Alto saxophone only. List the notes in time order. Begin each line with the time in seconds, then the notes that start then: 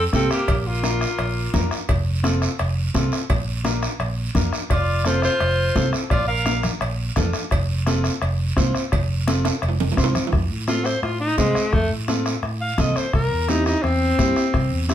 0.14 A4
0.32 G4
0.59 G4
0.67 F4
4.72 D5
5.07 C5
5.25 C5
6.10 D5
6.28 F5
10.68 F4
10.85 C5
11.03 F4
11.20 D#4
11.38 G#3
11.73 A3
12.61 F5
12.80 D#5
12.97 C5
13.15 A#4
13.49 D#4
13.66 D#4
13.83 C4